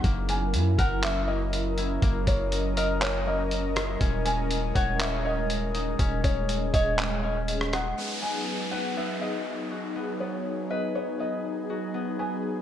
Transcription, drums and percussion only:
0.04 kick loud
0.04 closed hi-hat medium
0.29 closed hi-hat medium
0.54 closed hi-hat medium
0.79 kick loud
0.79 closed hi-hat medium
1.03 clap loud
1.03 closed hi-hat medium
1.53 closed hi-hat medium
1.78 closed hi-hat medium
2.02 kick loud
2.02 closed hi-hat medium
2.27 kick loud
2.27 closed hi-hat medium
2.52 closed hi-hat medium
2.77 closed hi-hat medium
3.01 clap loud
3.01 closed hi-hat medium
3.51 closed hi-hat medium
3.76 cross-stick loud
3.76 closed hi-hat medium
4.01 kick loud
4.01 closed hi-hat medium
4.26 closed hi-hat medium
4.51 closed hi-hat medium
4.75 kick medium
4.75 closed hi-hat medium
5.00 clap loud
5.00 closed hi-hat medium
5.50 closed hi-hat medium
5.75 closed hi-hat medium
5.99 kick loud
5.99 closed hi-hat medium
6.24 kick loud
6.24 closed hi-hat medium
6.49 closed hi-hat medium
6.74 kick loud
6.74 closed hi-hat medium
6.98 clap loud
6.98 closed hi-hat medium
7.48 closed hi-hat medium
7.61 cross-stick medium
7.73 cross-stick loud
7.73 closed hi-hat medium

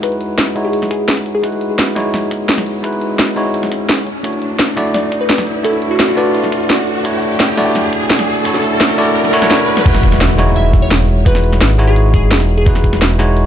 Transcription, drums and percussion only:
0.03 kick loud
0.03 closed hi-hat medium
0.12 closed hi-hat soft
0.21 closed hi-hat medium
0.38 snare loud
0.38 closed hi-hat medium
0.56 closed hi-hat medium
0.73 closed hi-hat medium
0.82 snare soft
0.91 kick loud
0.91 closed hi-hat medium
1.08 snare loud
1.08 closed hi-hat medium
1.17 kick medium
1.17 closed hi-hat soft
1.26 closed hi-hat medium
1.44 kick loud
1.44 closed hi-hat medium
1.52 closed hi-hat soft
1.61 closed hi-hat medium
1.79 snare loud
1.79 closed hi-hat medium
1.96 snare soft
1.96 closed hi-hat medium
2.14 snare soft
2.14 closed hi-hat medium
2.31 kick loud
2.31 closed hi-hat medium
2.49 snare loud
2.49 closed hi-hat medium
2.58 snare medium
2.58 closed hi-hat soft
2.66 closed hi-hat medium
2.84 kick loud
2.84 closed hi-hat medium
2.93 closed hi-hat soft
3.02 closed hi-hat medium
3.19 snare loud
3.19 closed hi-hat medium
3.37 closed hi-hat medium
3.54 closed hi-hat medium
3.63 snare soft
3.72 kick loud
3.72 closed hi-hat medium
3.89 snare loud
3.89 closed hi-hat medium
3.98 kick medium
3.98 closed hi-hat soft
4.07 closed hi-hat medium
4.24 kick loud
4.24 closed hi-hat medium
4.33 closed hi-hat soft
4.42 closed hi-hat medium
4.59 snare loud
4.59 closed hi-hat medium
4.77 snare soft
4.77 closed hi-hat medium
4.94 snare soft
4.94 closed hi-hat medium
5.12 kick loud
5.12 closed hi-hat medium
5.29 snare loud
5.29 closed hi-hat medium
5.38 snare medium
5.38 closed hi-hat soft
5.47 closed hi-hat medium
5.64 kick loud
5.64 closed hi-hat medium
5.73 closed hi-hat soft
5.82 closed hi-hat medium
6.00 snare loud
6.00 closed hi-hat medium
6.17 closed hi-hat medium
6.35 closed hi-hat medium
6.44 snare soft
6.52 kick loud
6.52 closed hi-hat medium
6.70 snare loud
6.70 closed hi-hat medium
6.79 kick medium
6.79 closed hi-hat soft
6.87 closed hi-hat medium
7.05 kick loud
7.05 closed hi-hat loud
7.14 closed hi-hat soft
7.22 closed hi-hat medium
7.40 snare loud
7.40 closed hi-hat medium
7.58 snare soft
7.58 closed hi-hat medium
7.75 snare soft
7.75 closed hi-hat loud
7.93 kick loud
7.93 closed hi-hat medium
8.10 snare loud
8.10 closed hi-hat loud
8.19 snare medium
8.19 closed hi-hat soft
8.28 closed hi-hat medium
8.45 kick loud
8.45 closed hi-hat loud
8.54 snare soft
8.54 closed hi-hat soft
8.63 closed hi-hat medium
8.81 snare loud
8.81 closed hi-hat medium
8.98 closed hi-hat medium
9.07 closed hi-hat soft
9.16 closed hi-hat loud
9.24 snare soft
9.24 closed hi-hat soft
9.33 kick loud
9.33 closed hi-hat medium
9.42 snare medium
9.51 snare loud
9.51 closed hi-hat loud
9.59 kick medium
9.59 closed hi-hat soft
9.68 closed hi-hat medium
9.77 snare medium
9.86 kick loud
9.86 closed hi-hat medium
9.86 crash loud
9.95 snare medium
9.95 closed hi-hat soft
10.03 kick medium
10.03 closed hi-hat medium
10.12 snare soft
10.21 snare loud
10.21 closed hi-hat loud
10.39 snare soft
10.39 closed hi-hat medium
10.56 closed hi-hat loud
10.73 kick loud
10.73 closed hi-hat medium
10.91 snare loud
10.91 closed hi-hat medium
11.00 closed hi-hat soft
11.09 open hi-hat medium
11.26 kick loud
11.26 closed hi-hat loud
11.35 snare medium
11.35 closed hi-hat soft
11.44 closed hi-hat medium
11.53 snare soft
11.61 snare loud
11.61 closed hi-hat medium
11.79 closed hi-hat medium
11.96 closed hi-hat loud
12.14 kick loud
12.14 closed hi-hat medium
12.31 snare loud
12.31 closed hi-hat medium
12.40 snare soft
12.40 closed hi-hat soft
12.49 open hi-hat medium
12.66 kick loud
12.66 closed hi-hat medium
12.75 snare soft
12.75 closed hi-hat soft
12.84 kick medium
12.84 closed hi-hat medium
12.93 snare soft
13.02 snare loud
13.02 closed hi-hat medium
13.19 snare soft
13.19 closed hi-hat medium
13.37 closed hi-hat medium

